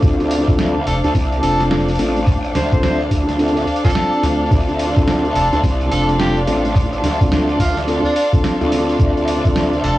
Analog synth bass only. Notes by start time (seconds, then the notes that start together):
0.87 F1
1.43 F1
1.71 F1
4.23 D2
5.35 F1
5.92 F1
6.19 F1
9.84 F1